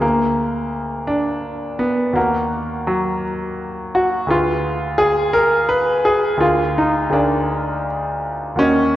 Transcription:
Already playing: D2
0.00 A#3 G#4 A#4 F5
1.07 D4
1.79 B3
2.13 D#2 A#3 F#4 A#4 F#5
2.87 F#3
3.95 F#4
4.27 D2 F4 G#4 B4 F5
4.98 G#4
5.33 A#4
5.69 B4
6.05 G#4
6.37 D2 F4 G#4 A#4 F5
6.78 D#4
7.09 D2 D4 G#4 A#4 F5
8.55 D#2 C#4 F#4 A#4 D#5

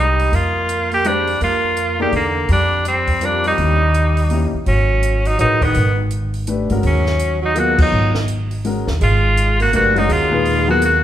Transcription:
Already playing: C2 G3
0.00 D#4
0.19 open hi-hat
0.32 F2 A#3 F4, open hi-hat
0.69 closed hi-hat
0.91 A#3 G4, open hi-hat
1.04 G3 G#3 D4 G4 C5, closed hi-hat
1.27 open hi-hat
1.41 F2 A#3 F4, open hi-hat
1.77 closed hi-hat
2.00 A#3 D#4 G4 G#4 D5
2.12 E2 D3, open hi-hat
2.16 A#3
2.48 F2 G3 D4, open hi-hat
2.85 G3 C4, closed hi-hat
3.07 kick, open hi-hat
3.21 G3 C4 F4 A#4, closed hi-hat
3.25 D4
3.44 G3 D#4, open hi-hat
3.58 D#2 A#3 C#4 E4 G4, open hi-hat
3.94 closed hi-hat
4.17 open hi-hat
4.30 A#3 C#4 E4 G4, open hi-hat
4.54 muted upright bass stroke
4.66 G#1 F#3 C#4, open hi-hat
5.03 closed hi-hat
5.24 F#3 D#4, open hi-hat
5.38 A1 F#3 D#4 G#4 A#4 B4, closed hi-hat
5.61 D#3 B3, kick, open hi-hat
5.74 G#1, open hi-hat
6.11 closed hi-hat
6.34 open hi-hat
6.47 A3 D4 G4 B4, closed hi-hat
6.70 G1 G#3 C#4 F#4 A#4, open hi-hat
6.83 D#2 F#3 C#4, open hi-hat
7.06 snare
7.19 closed hi-hat
7.42 F#3 D#4
7.55 F#3 A#3 B3 F4 F#4 G#4, closed hi-hat
7.78 F#3, kick, crash
7.82 D#4
7.92 G#1
8.14 snare
8.28 closed hi-hat
8.51 open hi-hat
8.64 G#3 C#4 F#4 A#4, open hi-hat
8.87 D#2, snare
9.01 G#1 G#3 F4, open hi-hat
9.37 closed hi-hat
9.60 A#3 F#4, open hi-hat
9.73 F#1 A3 A#3 D4 F#4 G4 B4, closed hi-hat
9.96 F#3 G#3 C#4 D#4 F#4 A#4, open hi-hat
10.09 D#2 G#3 F4, open hi-hat
10.31 A#2 D#4 G#4 B4
10.45 open hi-hat
10.68 F#3 A#3 B3 F4 F#4 G#4
10.82 A#3 F#4, closed hi-hat

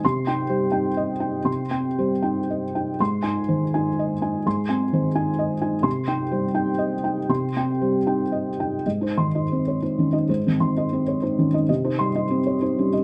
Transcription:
0.05 C3 C6
0.27 D#4 G5
0.49 G3 C5
0.72 D#4 G5
0.97 D#5
1.20 D#4 G5
1.44 C3 C6
1.71 C4 G5
1.98 G3 C5
2.22 D#4 G5
2.50 D#5
2.75 D#4 G5
3.00 G#2 C6
3.23 D#4 G#5
3.48 D#3 C5
3.74 D#4 G#5
3.99 D#5
4.22 D#4 G#5
4.46 G#2 C6
4.69 C4 G#5
4.93 D#3 C5
5.15 D#4 G#5
5.39 D#5
5.61 D#4 G#5
5.83 C3 C6
6.08 D#4 G5
6.31 G3 C5
6.54 D#4 G5
6.78 D#5
7.04 D#4 G5
7.29 C3 C6
7.56 C4 G5
7.81 G3 C5
8.07 D#4 G5
8.32 D#5
8.60 D#4 G5
8.86 G#2 D#5
9.01 D#4 C5
9.18 D#3 C6
9.35 D#4 D#5
9.52 C4 C5
9.68 C#5
9.82 D#4 C5
9.98 D#3 C#4
10.13 D#4 D#5
10.29 G#2 C5
10.47 D#3 C4
10.60 D#3 C6
10.77 D#4 D#5
10.93 C4 C5
11.08 C#5
11.22 D#4 C5
11.39 D#3 C#4
11.54 D#4 D#5
11.69 C3 D#5
11.84 D#4 C5
11.99 G3 C6
12.15 D#4 D#5
12.30 C4 C5
12.47 C#5
12.62 D#4 C5
12.78 G3 C#4
12.93 D#4 D#5

